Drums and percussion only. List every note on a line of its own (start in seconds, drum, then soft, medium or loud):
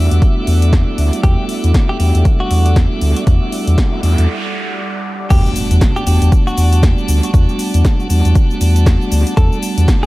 0.11 closed hi-hat medium
0.22 kick loud
0.22 closed hi-hat medium
0.47 open hi-hat loud
0.62 closed hi-hat medium
0.73 kick loud
0.73 snare loud
0.73 closed hi-hat medium
0.98 open hi-hat loud
1.13 closed hi-hat medium
1.24 kick loud
1.24 closed hi-hat medium
1.49 open hi-hat medium
1.64 closed hi-hat medium
1.74 kick loud
1.74 snare loud
1.74 closed hi-hat medium
2.00 open hi-hat loud
2.15 closed hi-hat medium
2.25 kick loud
2.25 closed hi-hat medium
2.51 open hi-hat loud
2.66 closed hi-hat medium
2.76 kick loud
2.76 snare loud
2.76 closed hi-hat medium
3.01 open hi-hat loud
3.17 closed hi-hat medium
3.27 kick loud
3.27 closed hi-hat medium
3.52 open hi-hat loud
3.67 closed hi-hat medium
3.78 kick loud
3.78 snare loud
3.78 closed hi-hat medium
4.03 open hi-hat loud
4.18 closed hi-hat medium
5.30 kick loud
5.30 closed hi-hat medium
5.30 crash loud
5.30 cabasa soft
5.46 cabasa soft
5.56 open hi-hat loud
5.56 cabasa medium
5.71 closed hi-hat medium
5.71 cabasa soft
5.81 kick loud
5.81 snare loud
5.81 closed hi-hat medium
5.81 cabasa soft
5.96 cabasa soft
6.07 open hi-hat loud
6.07 cabasa medium
6.22 closed hi-hat medium
6.22 cabasa soft
6.32 kick loud
6.32 closed hi-hat medium
6.32 cabasa soft
6.47 cabasa soft
6.58 open hi-hat loud
6.58 cabasa medium
6.73 closed hi-hat medium
6.73 cabasa soft
6.83 kick loud
6.83 snare loud
6.83 closed hi-hat medium
6.83 cabasa soft
6.98 cabasa soft
7.08 open hi-hat loud
7.08 cabasa medium
7.23 closed hi-hat medium
7.23 cabasa soft
7.34 kick loud
7.34 closed hi-hat medium
7.34 cabasa soft
7.49 cabasa soft
7.59 open hi-hat loud
7.59 cabasa medium
7.74 closed hi-hat medium
7.74 cabasa soft
7.85 kick loud
7.85 snare loud
7.85 closed hi-hat medium
7.85 cabasa soft
8.00 cabasa soft
8.10 open hi-hat loud
8.10 cabasa medium
8.25 closed hi-hat medium
8.25 cabasa soft
8.35 kick loud
8.35 closed hi-hat medium
8.35 cabasa soft
8.51 cabasa soft
8.61 open hi-hat loud
8.61 cabasa medium
8.76 closed hi-hat medium
8.76 cabasa soft
8.86 kick loud
8.86 snare loud
8.86 closed hi-hat medium
8.86 cabasa soft
9.01 cabasa soft
9.12 open hi-hat loud
9.12 cabasa medium
9.27 closed hi-hat medium
9.27 cabasa soft
9.37 kick loud
9.37 closed hi-hat medium
9.37 cabasa soft
9.52 cabasa soft
9.63 open hi-hat loud
9.63 cabasa medium
9.78 closed hi-hat medium
9.78 cabasa soft
9.88 kick loud
9.88 snare loud
9.88 closed hi-hat medium
9.88 cabasa soft